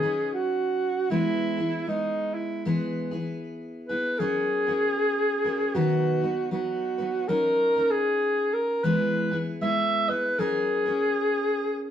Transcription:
Already playing: G#4
0.02 F#3 C#4 D#4 B4
0.34 F#4
1.10 E3 G#3 B3 E4 G#4
1.57 B3 E4 G#4
1.87 G#3 B3 D#4 G#4
2.34 E4
2.65 E3 G#3 B3 E4 G#4
3.11 B3 E4 G#4
3.88 B3 E4 G#4 B4
4.19 F#3 C#4 F#4 G#4 A#4
4.67 C#4 F#4 A#4
5.44 C#4 F#4 A#4
5.74 B2 D#3 F#3 B3 D#4 F#4 B4
6.21 F#3 B3 D#4 B4
6.51 F#3 B3 D#4 F#4 B4
6.98 F#3 B3 D#4 B4
7.28 F#3 C#4 D#4 A#4
7.75 C#4 D#4 A#4
7.91 G#4
8.53 A#4
8.84 E3 G#3 B3 E4 G#4 B4
9.31 B3 E4 G#4
9.61 G#3 B3 E4 G#4 E5
10.09 B3 E4 G#4 B4
10.39 F#3 C#4 F#4 G#4 A#4
10.85 C#4 F#4 A#4

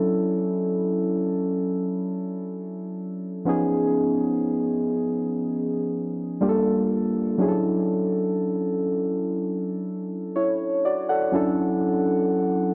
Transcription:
Already playing: F#3 C#4 D4 E4 A4
3.45 F3 B3 C#4 D#4 G#4
6.41 G3 A#3 D4 F4 G4
6.49 A4
7.38 F#3 C#4 D4 E4 G#4
7.48 A4
10.36 E4 C#5
10.85 F#4 D5
11.09 A4 F#5
11.32 F#3 C#4 D4 E4 A4

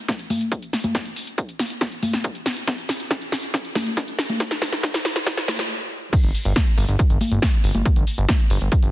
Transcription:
0.08 kick, snare, closed hi-hat
0.19 closed hi-hat
0.30 open hi-hat, high conga
0.41 closed hi-hat
0.52 kick, closed hi-hat
0.62 closed hi-hat
0.73 snare, open hi-hat
0.84 closed hi-hat, high conga
0.95 kick, snare, closed hi-hat
1.06 closed hi-hat
1.16 open hi-hat
1.27 closed hi-hat
1.38 kick, closed hi-hat
1.49 closed hi-hat
1.59 snare, open hi-hat
1.70 closed hi-hat
1.81 kick, snare, closed hi-hat
1.92 closed hi-hat
2.03 open hi-hat, high conga
2.13 snare, closed hi-hat
2.24 kick, closed hi-hat
2.35 closed hi-hat
2.46 snare, open hi-hat
2.57 closed hi-hat
2.67 kick, snare, closed hi-hat
2.78 closed hi-hat
2.89 snare, open hi-hat
3.00 closed hi-hat
3.11 kick, snare, closed hi-hat
3.21 closed hi-hat
3.32 snare, open hi-hat
3.43 closed hi-hat
3.54 kick, snare, closed hi-hat
3.65 closed hi-hat
3.75 snare, open hi-hat, high conga
3.86 closed hi-hat
3.97 kick, snare, closed hi-hat
4.08 closed hi-hat
4.19 snare, open hi-hat
4.29 closed hi-hat, high conga
4.40 kick, snare, closed hi-hat
4.51 snare, closed hi-hat
4.62 snare, open hi-hat
4.73 snare, closed hi-hat
4.83 kick, snare, closed hi-hat
4.94 snare, closed hi-hat
5.05 snare, open hi-hat
5.16 snare, closed hi-hat
5.26 kick, snare, closed hi-hat
5.37 snare, closed hi-hat
5.48 snare, open hi-hat, high conga
5.59 snare, closed hi-hat, high conga
6.13 kick, closed hi-hat, crash
6.24 G1, closed hi-hat
6.34 open hi-hat
6.45 G1, closed hi-hat
6.56 kick, snare, closed hi-hat
6.67 closed hi-hat
6.78 G1, open hi-hat
6.88 G1, closed hi-hat
6.99 kick, closed hi-hat
7.10 G1, closed hi-hat
7.21 open hi-hat, high conga
7.32 G1, closed hi-hat
7.42 kick, snare, closed hi-hat
7.53 closed hi-hat
7.64 G1, open hi-hat
7.75 G1, closed hi-hat, high conga
7.85 kick, closed hi-hat
7.96 G1, closed hi-hat
8.07 open hi-hat
8.18 G1, closed hi-hat
8.29 kick, snare, closed hi-hat
8.39 closed hi-hat
8.50 G1, open hi-hat
8.61 G1, closed hi-hat
8.72 kick, closed hi-hat
8.83 G1, closed hi-hat

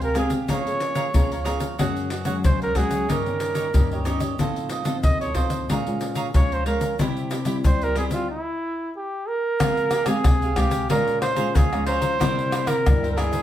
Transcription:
Already playing: C3 C4 G4
0.00 G4 A#4 F5 G#5, pandeiro, shaker
0.14 G#3 C4 G4 G#4 F5 G#5, pandeiro, shaker
0.18 G#4
0.29 G4 F5 G#5, pandeiro, shaker
0.48 F3 A#3 C#4 G#4 C#5 F5 A#5, pandeiro, shaker, surdo
0.66 A#3 C#4 G#4, pandeiro, shaker
0.80 pandeiro
0.95 G#4 C#5 F5 A#5, pandeiro, shaker
1.14 F3 A#3 C#4 G#4 C#5 F5 A#5, pandeiro, shaker, surdo
1.31 C#5 F5 A#5, pandeiro, shaker
1.44 A#3 C#4 G#4 C#5 F5 A#5, pandeiro, shaker
1.59 C#5 F5 A#5, pandeiro, shaker
1.79 F#2 F#3 G#3 C#4 F#4 G#4 C#5 F#5, pandeiro, shaker, surdo
1.96 pandeiro, shaker
2.10 F#4 G#4 C#5 F#5, pandeiro
2.25 F#3 G#3 C#4 F#4 G#4 C#5 F#5, pandeiro, shaker
2.44 C#3 C5, pandeiro, shaker, surdo
2.62 G#4 A#4 C#5 F#5, pandeiro, shaker
2.75 F#3 G#3 C#4 F#4 G#4 C#5 F#5, pandeiro, surdo
2.90 G#4 C#5 F#5, pandeiro, shaker
3.08 G2 D#3 A#3 C#4 D#4 G4 A#4 C#5 D#5, pandeiro, shaker, surdo
3.26 D#3 A#3 C#4, pandeiro, shaker
3.40 pandeiro, shaker
3.55 D#4 G4 C#5 D#5, pandeiro, shaker
3.74 G2 D#3 A#3 C#4 D#4 G4 C#5 D#5, pandeiro, shaker, surdo
3.91 G4 C#5 D#5, pandeiro, shaker
4.05 D#3 A#3 C#4 D#4 G4 C#5 D#5, pandeiro, shaker
4.20 G4 C#5 D#5, pandeiro, shaker
4.39 A2 F3 C4 D#4 F4 A4 C5 D#5, pandeiro, shaker, surdo
4.56 pandeiro, shaker
4.69 F4 A4 C5 D#5, pandeiro, shaker
4.85 F3 C4 D#4 F4 A4 C5 D#5, pandeiro, shaker
5.03 A2 D#5, pandeiro, shaker, surdo
5.21 A4 C5 C#5 D#5, pandeiro, shaker
5.34 F3 C4 D#4 F4 A4 C5 D#5, pandeiro, shaker, surdo
5.50 A4 C5 D#5, pandeiro, shaker
5.69 A#2 G#3 C#4 F4 G#4 C#5 F5 A#5, pandeiro, shaker, surdo
5.87 G#3 C#4 F4, pandeiro, shaker
6.01 pandeiro, shaker
6.15 G#4 C#5 F5 A#5, pandeiro, shaker
6.34 F3 G#3 C#4 F4 G#4 C#5 F5 A#5, pandeiro, shaker, surdo
6.52 C5 C#5 F5 A#5, pandeiro, shaker
6.66 G#3 C#4 F4 G#4 A#4 C#5 F5 A#5, pandeiro
6.81 C#5 F5 A#5, pandeiro, shaker
6.99 C3 G3 C4 E4 G4 C5 E5, pandeiro, shaker, surdo
7.17 pandeiro, shaker
7.31 E4 G4 C5 E5, pandeiro, shaker
7.45 G3 C4 E4 G4 C5 E5, pandeiro, shaker
7.64 G3 C5, pandeiro, shaker, surdo
7.81 G4 A#4 C5 E5, pandeiro, shaker
7.96 G3 C4 E4 G4 G#4 C5 E5, pandeiro
8.11 F4 G4 C5 E5, pandeiro, shaker
8.31 E4
8.97 G4
9.28 A#4
9.60 F3 G#3 C4 G#4 F5 G#5, pandeiro, tamborim, shaker, surdo
9.77 pandeiro, shaker
9.91 G4 G#4 F5 G#5, pandeiro, tamborim, shaker
10.06 G#3 C4 G4 G#4 F5 G#5, pandeiro, tamborim, shaker
10.24 C3, pandeiro, tamborim, shaker, surdo
10.42 G4 F5 G#5, pandeiro, shaker
10.56 G#3 C4 G4 G#4 F5 G#5, pandeiro, tamborim, surdo
10.70 G4 F5 G#5, pandeiro, shaker
10.89 A#2 G#3 C#4 F4 G#4 A#4 C#5 F5 A#5, pandeiro, shaker, surdo
11.07 pandeiro, shaker
11.21 C5, pandeiro, tamborim
11.36 G#3 C#4 F4 G#4 C#5 F5 A#5, pandeiro, shaker
11.55 F3 G#4 C#5 F5 A#5, pandeiro, shaker, surdo
11.72 G#3 C#4 F4 C#5 F5 A#5, pandeiro, tamborim, shaker
11.86 G#4 C5 C#5 F5 A#5, pandeiro
12.00 C#5 F5 A#5, pandeiro, shaker
12.19 C3 G3 A#3 E4 A#4 C5 E5, pandeiro, tamborim, shaker, surdo
12.39 pandeiro, shaker
12.51 E4 A#4 C5 E5, pandeiro, tamborim, shaker
12.66 E4 A#4 C5 E5, pandeiro, tamborim, shaker
12.86 G2 G3 A#3 E4, pandeiro, tamborim, shaker, surdo
13.03 A#4 C5 E5, pandeiro, shaker
13.11 A#4
13.16 A#3 E4 G#4 A#4 C5 E5, pandeiro, tamborim
13.31 A#4 C5 E5, pandeiro, shaker

